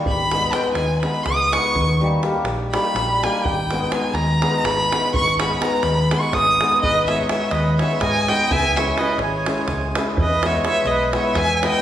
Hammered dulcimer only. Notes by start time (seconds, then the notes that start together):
Already playing: G3
0.32 G#3 B3 D#4 G#4
0.54 G#3 B3 D#4 G#4
1.03 G#3 B3 D#4 G#4
1.52 G#3 B3 D#4 G#4
2.01 G3 A#3 D#4 G4
2.23 G3 A#3 D#4 G4
2.73 G3 A#3 D#4 G4
3.23 G3 A#3 D#4 G4
3.72 G#3 B3 D#4 G#4
3.92 G#3 B3 D#4 G#4
4.41 G#3 B3 D#4 G#4
4.90 G#3 B3 D#4 G#4
5.39 G#3 B3 D#4 G#4
5.61 G#3 B3 D#4 G#4
6.11 G#3 B3 D#4 G#4
6.61 G#3 B3 D#4 G#4
7.09 G#3 B3 D#4 G#4
7.30 G#3 B3 D#4 G#4
7.80 G#3 B3 D#4 G#4
8.30 G#3 B3 D#4 G#4
8.76 G#3 C#4 E4 G#4
8.99 G#3 C#4 E4 G#4
9.46 G#3 C#4 E4 G#4
9.96 G#3 C#4 E4 G#4
10.44 G#3 B3 E4 G#4
10.66 G#3 B3 E4 G#4
11.13 G#3 B3 E4 G#4
11.62 G#3 B3 E4 G#4